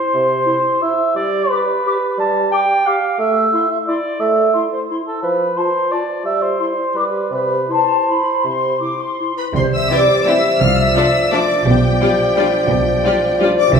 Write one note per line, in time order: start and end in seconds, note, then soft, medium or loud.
0.00 0.83 C5 medium
0.14 0.42 C3 medium
0.46 0.59 E4 soft
0.46 0.53 C6 soft
0.81 0.94 E4 soft
0.81 1.15 E5 medium
0.81 0.88 C6 soft
1.15 1.45 G3 medium
1.15 1.51 D5 medium
1.50 1.64 G4 soft
1.50 2.19 B4 medium
1.50 1.58 D6 soft
1.86 1.98 G4 soft
1.86 1.92 D6 soft
2.18 2.46 G3 medium
2.18 2.51 A5 medium
2.52 2.65 G4 soft
2.52 2.88 G5 medium
2.52 2.59 D6 soft
2.86 2.99 G4 soft
2.86 3.19 F5 medium
2.86 2.93 D6 soft
3.19 3.47 A3 medium
3.19 3.69 E5 medium
3.52 3.66 E4 soft
3.52 3.59 C6 soft
3.70 3.78 E5 medium
3.88 4.00 E4 soft
3.88 4.21 D5 medium
3.88 3.94 C6 soft
4.20 4.49 A3 medium
4.20 4.57 E5 medium
4.54 4.68 E4 soft
4.54 4.60 C6 soft
4.72 4.80 C5 soft
4.90 5.02 E4 soft
4.90 4.96 C6 soft
5.07 5.22 A4 soft
5.22 5.51 F3 soft
5.22 5.58 B4 medium
5.57 5.70 F4 soft
5.57 5.93 C5 medium
5.57 5.64 A5 soft
5.92 6.04 F4 soft
5.92 6.25 D5 medium
5.92 5.98 A5 soft
6.24 6.53 G3 soft
6.24 6.43 E5 medium
6.42 6.97 C5 medium
6.59 6.73 E4 soft
6.59 6.66 C6 soft
6.95 7.26 G3 soft
6.95 7.10 G4 soft
6.95 7.32 B4 soft
6.95 7.03 D6 soft
7.31 7.62 C3 soft
7.31 7.72 B4 medium
7.69 7.83 E4 soft
7.69 9.19 C5 medium
7.69 8.06 A5 soft
8.10 8.22 E4 soft
8.10 8.44 B5 soft
8.44 8.74 C3 soft
8.44 8.81 C6 soft
8.81 8.94 E4 soft
8.81 8.99 D6 soft
9.00 9.37 C6 soft
9.20 9.33 E4 soft
9.37 9.43 B4 soft
9.37 9.45 B5 soft
9.54 9.82 C2 soft
9.54 9.82 C3 medium
9.54 10.62 G3 soft
9.54 9.71 C5 soft
9.54 10.63 C5 soft
9.54 9.63 C6 soft
9.74 9.90 E5 medium
9.74 9.90 E6 medium
9.90 9.99 E3 soft
9.90 10.03 C4 soft
9.90 9.99 E4 soft
9.90 10.03 G4 soft
9.90 10.00 G4 soft
9.90 9.99 C5 soft
9.90 10.27 D5 medium
9.90 10.27 D6 medium
10.26 10.35 E3 soft
10.26 10.40 C4 soft
10.26 10.35 E4 soft
10.26 10.34 G4 soft
10.26 10.39 G4 soft
10.26 10.34 C5 soft
10.26 10.61 E5 medium
10.26 10.61 E6 medium
10.60 10.88 C2 medium
10.60 10.88 C3 medium
10.60 11.66 F3 soft
10.60 11.66 D5 soft
10.60 10.78 F5 medium
10.60 10.77 F6 medium
10.78 11.31 E5 medium
10.78 11.32 E6 medium
10.95 11.04 F3 soft
10.95 11.09 D4 soft
10.95 11.04 D4 soft
10.95 11.08 F4 soft
10.95 11.04 A4 soft
10.95 11.04 D5 soft
11.31 11.40 F3 soft
11.31 11.44 D4 soft
11.31 11.40 D4 soft
11.31 11.44 F4 soft
11.31 11.40 A4 soft
11.31 11.40 D5 soft
11.31 11.66 D5 soft
11.31 11.67 D6 medium
11.66 11.93 B1 medium
11.66 11.93 B2 medium
11.66 13.74 F3 soft
11.66 13.34 G4 medium
11.66 13.75 D5 medium
11.66 13.38 G5 medium
12.01 12.10 G3 soft
12.01 12.14 D4 soft
12.01 12.14 F4 soft
12.01 12.10 F4 soft
12.01 12.09 G4 soft
12.01 12.10 D5 soft
12.35 12.44 G3 soft
12.35 12.48 D4 soft
12.35 12.48 F4 soft
12.35 12.44 F4 soft
12.35 12.45 G4 soft
12.35 12.46 D5 soft
12.70 12.97 B1 soft
12.70 12.97 B2 medium
13.03 13.12 G3 soft
13.03 13.16 D4 soft
13.03 13.17 F4 soft
13.03 13.12 F4 soft
13.03 13.14 G4 soft
13.03 13.13 D5 soft
13.40 13.48 G3 soft
13.40 13.52 D4 soft
13.40 13.52 F4 soft
13.40 13.48 F4 soft
13.40 13.50 G4 soft
13.40 13.50 D5 soft
13.56 13.71 D5 medium
13.56 13.73 D6 medium
13.72 13.80 C2 medium
13.72 13.80 C3 medium
13.72 13.80 E3 soft
13.72 13.80 C5 medium
13.72 13.80 E5 medium
13.72 13.80 E6 medium